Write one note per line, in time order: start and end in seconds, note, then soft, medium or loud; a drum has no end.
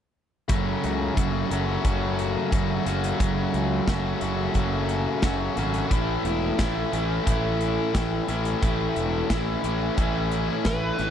0.48 0.75 F#1 medium
0.48 1.15 F#2 medium
0.48 1.15 C#3 medium
0.48 1.16 F#3 medium
0.48 1.17 A3 medium
0.48 1.17 C#4 medium
0.48 1.18 F#4 medium
0.48 kick loud
0.48 closed hi-hat medium
0.84 1.09 C#2 medium
0.84 closed hi-hat medium
1.16 1.42 F#1 medium
1.16 1.50 F#2 medium
1.16 1.50 C#3 medium
1.16 1.50 F#3 medium
1.16 1.51 A3 medium
1.16 1.52 C#4 medium
1.16 1.52 F#4 medium
1.16 kick loud
1.16 closed hi-hat medium
1.50 1.76 F#1 medium
1.50 1.83 F#2 medium
1.50 1.84 C#3 medium
1.50 1.84 F#3 medium
1.50 1.85 A3 medium
1.50 1.86 C#4 medium
1.50 1.85 F#4 medium
1.50 closed hi-hat medium
1.84 2.35 F#1 medium
1.84 2.51 F#2 medium
1.84 2.51 C#3 medium
1.84 2.52 F#3 medium
1.84 2.53 A3 medium
1.84 2.53 C#4 medium
1.84 2.53 F#4 medium
1.84 kick loud
1.84 closed hi-hat medium
2.19 closed hi-hat medium
2.52 2.78 F#1 medium
2.52 2.84 F#2 medium
2.52 2.84 C#3 medium
2.52 2.84 F#3 medium
2.52 2.86 A3 medium
2.52 2.86 C#4 medium
2.52 2.86 F#4 medium
2.52 kick loud
2.52 closed hi-hat medium
2.85 3.11 F#1 medium
2.85 3.18 F#2 medium
2.85 3.18 C#3 medium
2.85 3.19 F#3 medium
2.85 3.20 A3 medium
2.85 3.21 C#4 medium
2.85 3.21 F#4 medium
2.85 closed hi-hat medium
3.04 closed hi-hat medium
3.19 3.45 F#1 medium
3.19 3.86 F#2 medium
3.19 3.86 C#3 medium
3.19 3.87 F#3 medium
3.19 3.88 A3 medium
3.19 3.89 C#4 medium
3.19 3.88 F#4 medium
3.19 kick loud
3.19 closed hi-hat medium
3.54 3.79 C#2 medium
3.54 closed hi-hat medium
3.87 4.13 F#1 medium
3.87 4.20 F#2 medium
3.87 4.20 C#3 medium
3.87 4.21 F#3 medium
3.87 4.22 A3 medium
3.87 4.22 C#4 medium
3.87 4.22 F#4 medium
3.87 kick medium
3.87 snare medium
3.87 closed hi-hat medium
4.21 4.47 F#1 medium
4.21 4.53 F#2 medium
4.21 4.54 C#3 medium
4.21 4.54 F#3 medium
4.21 4.56 A3 medium
4.21 4.56 C#4 medium
4.21 4.55 F#4 medium
4.21 closed hi-hat medium
4.54 5.05 F#1 medium
4.54 5.22 F#2 medium
4.54 5.22 C#3 medium
4.54 5.23 F#3 loud
4.54 5.23 A3 medium
4.54 5.24 C#4 medium
4.54 5.23 F#4 medium
4.54 kick medium
4.54 closed hi-hat soft
4.89 closed hi-hat soft
5.22 5.48 F#1 medium
5.22 5.54 F#2 medium
5.22 5.55 C#3 medium
5.22 5.55 F#3 medium
5.22 5.57 A3 medium
5.22 5.57 C#4 medium
5.22 5.57 F#4 medium
5.22 kick medium
5.22 snare medium
5.22 closed hi-hat medium
5.56 5.82 G#1 medium
5.56 5.88 F#2 medium
5.56 5.89 C#3 medium
5.56 5.89 F#3 medium
5.56 5.90 A3 medium
5.56 5.91 C#4 medium
5.56 5.90 F#4 medium
5.56 closed hi-hat medium
5.74 closed hi-hat soft
5.90 6.16 A1 medium
5.90 6.58 A2 medium
5.90 6.58 E3 medium
5.90 6.58 A3 medium
5.90 6.59 C#4 medium
5.90 6.59 E4 loud
5.90 kick loud
5.90 closed hi-hat medium
6.25 6.50 E1 medium
6.25 closed hi-hat medium
6.58 6.84 A1 medium
6.58 6.91 A2 medium
6.58 6.92 E3 medium
6.58 6.92 A3 medium
6.58 6.93 C#4 medium
6.58 6.94 E4 medium
6.58 kick medium
6.58 snare loud
6.58 closed hi-hat medium
6.91 7.18 A1 medium
6.91 7.24 A2 medium
6.91 7.25 E3 medium
6.91 7.26 A3 medium
6.91 7.26 C#4 medium
6.91 7.26 E4 medium
6.91 closed hi-hat medium
7.25 7.77 A1 medium
7.25 7.92 A2 medium
7.25 7.93 E3 medium
7.25 7.94 A3 loud
7.25 7.95 C#4 medium
7.25 7.94 E4 loud
7.25 kick loud
7.25 closed hi-hat medium
7.61 closed hi-hat soft
7.93 8.20 A1 medium
7.93 8.27 A2 medium
7.93 8.27 E3 medium
7.93 8.28 A3 medium
7.93 8.29 C#4 medium
7.93 8.28 E4 medium
7.93 kick loud
7.93 snare medium
7.93 closed hi-hat medium
8.28 8.54 A1 medium
8.28 8.60 A2 medium
8.28 8.61 E3 medium
8.28 8.61 A3 medium
8.28 8.61 C#4 medium
8.28 8.62 E4 medium
8.28 closed hi-hat medium
8.45 closed hi-hat medium
8.62 8.87 A1 medium
8.62 9.28 A2 medium
8.62 9.29 E3 medium
8.62 9.29 A3 medium
8.62 9.29 C#4 medium
8.62 9.30 E4 medium
8.62 kick loud
8.62 closed hi-hat medium
8.96 9.21 E1 medium
8.96 closed hi-hat medium
9.29 9.55 A1 medium
9.29 9.62 A2 medium
9.29 9.62 E3 medium
9.29 9.63 A3 medium
9.29 9.63 C#4 medium
9.29 9.64 E4 medium
9.29 kick medium
9.29 snare loud
9.29 closed hi-hat medium
9.63 9.89 A1 medium
9.63 9.96 A2 medium
9.63 9.97 E3 medium
9.63 9.97 A3 medium
9.63 9.97 C#4 medium
9.63 9.97 E4 medium
9.63 closed hi-hat medium
9.97 10.48 A1 medium
9.97 10.63 A2 medium
9.97 10.64 E3 medium
9.97 10.64 A3 medium
9.97 10.64 C#4 loud
9.97 10.65 E4 loud
9.97 kick loud
9.97 closed hi-hat medium
10.32 closed hi-hat medium
10.64 10.90 A1 medium
10.64 10.97 A2 medium
10.64 10.97 E3 medium
10.64 10.98 A3 medium
10.64 10.98 C#4 medium
10.64 10.98 E4 medium
10.64 11.10 B4 medium
10.64 kick medium
10.64 snare loud
10.64 closed hi-hat medium
10.98 11.10 G#1 medium
10.98 11.10 A2 medium
10.98 11.10 E3 medium
10.98 11.10 A3 medium
10.98 11.10 C#4 medium
10.98 11.10 E4 medium
10.98 closed hi-hat medium